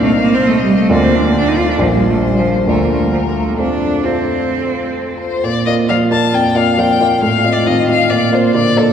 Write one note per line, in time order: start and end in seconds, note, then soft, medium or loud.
0.01 0.87 C2 soft
0.01 0.09 A3 medium
0.01 0.88 C4 soft
0.01 0.88 D#4 soft
0.01 0.88 D#5 soft
0.01 0.48 F5 medium
0.20 0.35 A#3 medium
0.34 0.49 C4 medium
0.47 0.62 A3 medium
0.47 0.91 D#5 medium
0.64 0.77 G3 medium
0.77 0.93 A3 medium
0.89 1.77 D2 medium
0.89 1.77 A#3 soft
0.89 1.05 A#3 medium
0.89 1.77 F4 soft
0.89 1.77 D5 soft
0.89 1.82 D5 medium
1.03 1.16 C4 medium
1.15 1.25 D4 medium
1.26 1.36 A#3 medium
1.37 1.49 D4 medium
1.48 1.60 D#4 medium
1.58 1.69 F4 medium
1.70 1.80 D4 medium
1.78 2.66 A#1 soft
1.78 1.86 F3 medium
1.78 2.66 A#3 soft
1.78 2.66 F4 soft
1.78 2.71 C5 medium
1.78 2.66 D5 soft
1.95 2.01 G3 medium
2.10 2.16 A3 medium
2.25 2.41 G3 medium
2.39 2.56 F3 medium
2.55 2.68 G3 medium
2.67 3.56 D2 soft
2.67 2.83 A3 medium
2.67 3.56 A#3 soft
2.67 3.56 F4 soft
2.67 3.59 A#4 soft
2.67 3.56 D5 soft
2.84 2.87 A#3 medium
2.92 3.03 A3 medium
3.02 3.12 G3 soft
3.12 3.17 F3 soft
3.24 3.34 G3 soft
3.35 3.49 A3 medium
3.47 3.58 A#3 soft
3.58 4.02 F2 soft
3.58 4.03 A3 soft
3.58 4.07 D4 medium
3.58 4.04 F4 soft
3.58 5.17 A4 soft
3.58 4.04 C5 soft
4.04 5.39 F2 soft
4.04 5.39 A3 soft
4.04 5.21 C4 soft
4.04 5.39 F4 soft
4.04 5.40 C5 soft
5.20 5.46 C5 medium
5.43 5.65 A#2 soft
5.43 5.65 D5 medium
5.66 5.87 A#3 soft
5.66 5.87 F4 soft
5.66 5.87 D5 soft
5.66 5.74 D#5 medium
5.88 6.22 F3 medium
5.88 6.08 A#3 soft
5.88 6.09 F4 soft
5.88 6.09 D5 soft
5.88 5.97 F5 medium
6.10 6.30 A#3 soft
6.10 6.31 F4 soft
6.10 6.31 D5 soft
6.10 6.36 A5 medium
6.32 6.55 F2 soft
6.32 6.58 G5 medium
6.55 6.76 A#3 soft
6.55 6.76 F4 soft
6.55 6.76 D5 soft
6.55 6.81 F5 medium
6.77 7.11 F3 medium
6.77 6.98 A#3 soft
6.77 6.99 F4 soft
6.77 6.99 D5 soft
6.77 7.22 G5 medium
7.00 7.20 A#3 soft
7.00 7.20 F4 soft
7.00 7.21 D5 soft
7.22 7.44 A2 medium
7.22 7.54 F5 medium
7.44 7.64 C4 soft
7.44 7.64 F4 soft
7.44 7.65 D#5 soft
7.53 7.68 D5 medium
7.65 8.00 D#3 medium
7.65 7.86 C4 soft
7.65 7.87 F4 soft
7.65 7.87 D#5 soft
7.65 7.88 D#5 medium
7.88 8.08 C4 soft
7.88 8.09 F4 soft
7.88 8.09 D#5 soft
7.88 8.12 F5 medium
8.10 8.32 A#2 medium
8.10 8.35 D5 medium
8.32 8.52 A#3 soft
8.32 8.52 F4 soft
8.32 8.54 C5 medium
8.32 8.53 D5 soft
8.54 8.87 D3 medium
8.54 8.74 A#3 soft
8.54 8.74 F4 soft
8.54 8.75 D5 soft
8.54 8.79 D5 medium
8.76 8.93 A#3 soft
8.76 8.93 F4 soft
8.76 8.93 A4 medium
8.76 8.93 D5 soft